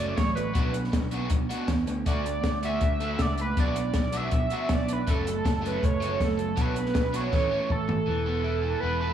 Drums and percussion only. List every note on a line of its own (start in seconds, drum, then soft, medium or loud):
0.18 kick loud
0.18 snare medium
0.18 closed hi-hat medium
0.37 closed hi-hat medium
0.55 kick loud
0.55 closed hi-hat medium
0.74 closed hi-hat medium
0.84 snare soft
0.93 kick loud
0.93 snare loud
0.93 closed hi-hat medium
1.11 closed hi-hat medium
1.30 kick loud
1.30 closed hi-hat medium
1.50 closed hi-hat medium
1.68 kick medium
1.68 snare medium
1.68 closed hi-hat medium
1.87 closed hi-hat medium
2.06 kick loud
2.06 closed hi-hat medium
2.26 closed hi-hat medium
2.44 kick loud
2.44 snare loud
2.44 closed hi-hat medium
2.63 closed hi-hat medium
2.81 kick loud
2.81 closed hi-hat medium
3.00 closed hi-hat medium
3.19 kick loud
3.19 snare medium
3.19 closed hi-hat medium
3.38 closed hi-hat medium
3.57 kick loud
3.57 closed hi-hat medium
3.76 closed hi-hat medium
3.94 kick loud
3.94 snare loud
3.94 closed hi-hat medium
4.12 closed hi-hat medium
4.31 kick loud
4.31 closed hi-hat medium
4.50 closed hi-hat medium
4.69 kick loud
4.69 snare loud
4.69 closed hi-hat medium
4.88 closed hi-hat medium
5.07 kick medium
5.07 closed hi-hat medium
5.27 closed hi-hat medium
5.45 kick loud
5.45 snare loud
5.45 closed hi-hat medium
5.66 closed hi-hat medium
5.83 kick loud
5.83 closed hi-hat medium
6.02 closed hi-hat soft
6.21 kick medium
6.21 snare medium
6.21 closed hi-hat medium
6.39 closed hi-hat soft
6.57 kick medium
6.57 closed hi-hat medium
6.76 closed hi-hat medium
6.86 snare soft
6.95 kick loud
6.95 snare loud
6.95 closed hi-hat medium
7.14 closed hi-hat medium
7.32 kick loud
7.32 snare medium
7.70 kick medium
7.89 floor tom medium